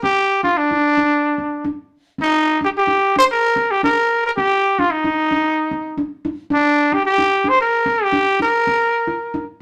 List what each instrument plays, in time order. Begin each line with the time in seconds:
0.03 handpan C4, trumpet G4
0.43 handpan D4, trumpet F4
0.57 trumpet D4
0.71 handpan D#4
0.98 handpan D4
1.38 handpan C4
1.65 handpan D4
2.19 handpan C4, trumpet D#4
2.61 handpan D4, trumpet G4
2.78 trumpet G4
2.87 handpan D#4
3.16 handpan D4, trumpet C5
3.32 trumpet A#4
3.56 handpan C4
3.71 trumpet G4
3.83 handpan D4, trumpet A#4
4.26 trumpet A#4
4.37 handpan C4, trumpet G4
4.79 handpan D4, trumpet F4
4.91 trumpet D#4
5.04 handpan D#4
5.31 handpan D4
5.71 handpan C4
5.98 handpan D4
6.25 handpan D#4
6.50 handpan D4, trumpet D4
6.92 handpan D4, trumpet G4
7.06 trumpet G4
7.18 handpan D#4
7.44 handpan D4
7.49 trumpet C5
7.61 trumpet A#4
7.86 handpan C4
8.03 trumpet G4
8.12 handpan D4
8.40 handpan D#4, trumpet A#4
8.67 handpan C4
9.07 handpan F4
9.34 handpan D#4